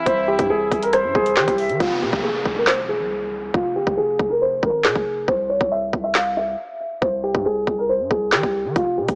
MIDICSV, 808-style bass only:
0, 0, Header, 1, 2, 480
1, 0, Start_track
1, 0, Key_signature, -4, "minor"
1, 0, Tempo, 434783
1, 71, Time_signature, 4, 2, 24, 8
1, 10103, End_track
2, 0, Start_track
2, 0, Title_t, "808-style bass"
2, 0, Program_c, 0, 38
2, 70, Note_on_c, 0, 36, 109
2, 416, Note_off_c, 0, 36, 0
2, 430, Note_on_c, 0, 43, 102
2, 545, Note_off_c, 0, 43, 0
2, 550, Note_on_c, 0, 36, 106
2, 781, Note_off_c, 0, 36, 0
2, 790, Note_on_c, 0, 36, 109
2, 1150, Note_on_c, 0, 43, 102
2, 1166, Note_off_c, 0, 36, 0
2, 1264, Note_off_c, 0, 43, 0
2, 1270, Note_on_c, 0, 36, 111
2, 1510, Note_on_c, 0, 52, 101
2, 1526, Note_off_c, 0, 36, 0
2, 1624, Note_off_c, 0, 52, 0
2, 1631, Note_on_c, 0, 36, 109
2, 1870, Note_on_c, 0, 52, 101
2, 1887, Note_off_c, 0, 36, 0
2, 1984, Note_off_c, 0, 52, 0
2, 1990, Note_on_c, 0, 29, 106
2, 2230, Note_on_c, 0, 48, 104
2, 2247, Note_off_c, 0, 29, 0
2, 2344, Note_off_c, 0, 48, 0
2, 2351, Note_on_c, 0, 29, 102
2, 2696, Note_off_c, 0, 29, 0
2, 2710, Note_on_c, 0, 28, 107
2, 3310, Note_on_c, 0, 36, 103
2, 3327, Note_off_c, 0, 28, 0
2, 3880, Note_off_c, 0, 36, 0
2, 3910, Note_on_c, 0, 29, 105
2, 4150, Note_on_c, 0, 31, 99
2, 4167, Note_off_c, 0, 29, 0
2, 4264, Note_off_c, 0, 31, 0
2, 4271, Note_on_c, 0, 29, 96
2, 4386, Note_off_c, 0, 29, 0
2, 4390, Note_on_c, 0, 29, 104
2, 4621, Note_off_c, 0, 29, 0
2, 4630, Note_on_c, 0, 29, 104
2, 5091, Note_off_c, 0, 29, 0
2, 5110, Note_on_c, 0, 32, 109
2, 5350, Note_on_c, 0, 48, 97
2, 5366, Note_off_c, 0, 32, 0
2, 5464, Note_off_c, 0, 48, 0
2, 5471, Note_on_c, 0, 29, 102
2, 5816, Note_off_c, 0, 29, 0
2, 5830, Note_on_c, 0, 36, 108
2, 6176, Note_off_c, 0, 36, 0
2, 6190, Note_on_c, 0, 36, 100
2, 6536, Note_off_c, 0, 36, 0
2, 6549, Note_on_c, 0, 36, 104
2, 7241, Note_off_c, 0, 36, 0
2, 7750, Note_on_c, 0, 36, 105
2, 8095, Note_off_c, 0, 36, 0
2, 8110, Note_on_c, 0, 43, 101
2, 8225, Note_off_c, 0, 43, 0
2, 8230, Note_on_c, 0, 36, 107
2, 8461, Note_off_c, 0, 36, 0
2, 8470, Note_on_c, 0, 36, 103
2, 8831, Note_on_c, 0, 43, 98
2, 8848, Note_off_c, 0, 36, 0
2, 8945, Note_off_c, 0, 43, 0
2, 8950, Note_on_c, 0, 36, 108
2, 9191, Note_on_c, 0, 52, 97
2, 9207, Note_off_c, 0, 36, 0
2, 9304, Note_off_c, 0, 52, 0
2, 9310, Note_on_c, 0, 36, 107
2, 9550, Note_on_c, 0, 52, 99
2, 9567, Note_off_c, 0, 36, 0
2, 9664, Note_off_c, 0, 52, 0
2, 9670, Note_on_c, 0, 29, 102
2, 9910, Note_on_c, 0, 48, 101
2, 9927, Note_off_c, 0, 29, 0
2, 10024, Note_off_c, 0, 48, 0
2, 10030, Note_on_c, 0, 29, 102
2, 10103, Note_off_c, 0, 29, 0
2, 10103, End_track
0, 0, End_of_file